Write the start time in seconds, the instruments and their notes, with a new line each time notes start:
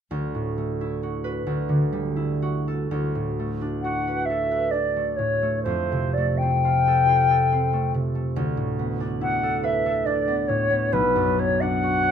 0.11 harp D2
0.35 harp A2
0.58 harp A3
0.81 harp E4
1.03 harp F#4
1.24 harp B4
1.47 harp D2
1.69 harp D3
1.93 harp G3
2.16 harp E4
2.42 harp F#4
2.68 harp A4
2.91 harp D2
3.15 harp A2
3.39 harp A3
3.61 harp D4
3.82 harp F#4, flute F#5
4.07 harp B4
4.25 flute E5
4.30 harp A4
4.51 harp B4
4.71 harp D4, flute D5
4.96 harp A3
5.16 harp A2, flute C#5
5.42 harp A3
5.63 harp F2, flute C5
5.92 harp C3
6.13 flute D5
6.17 harp A3
6.38 flute G5
6.42 harp C4
6.65 harp F4
6.88 harp A4
7.09 harp F4
7.31 harp A4
7.52 harp C4
7.73 harp A3
7.94 harp C3
8.15 harp A3
8.36 harp D2
8.57 harp A2
8.79 harp B3
9.00 harp D4
9.21 harp E4, flute F#5
9.43 harp A4
9.63 harp B4, flute E5
9.86 harp A4
10.06 harp D4, flute D5
10.28 harp B3
10.48 harp A2, flute C#5
10.70 harp B3
10.93 harp B1, flute B4
11.16 harp F#2
11.39 harp B3, flute C#5
11.61 harp D4, flute F#5
11.83 harp F#4
12.03 harp C#5